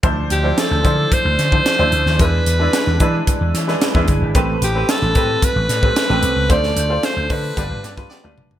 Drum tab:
HH |x-x-x-x-x-x-x-x-|x-x-x-x-x-x-x-x-|x-x-x-x-x-x-x-x-|x-x-x-o-x-x-----|
SD |----o-----o-o--o|----o-----ooo---|----o-----o-o---|-o--o-----ooo---|
T1 |----------------|----------------|----------------|-------------o--|
T2 |----------------|----------------|----------------|--------------o-|
FT |----------------|----------------|----------------|---------------o|
BD |o-----o-o--o----|o-----o-o----oo-|o-----o-o--o----|o-----o-o--o----|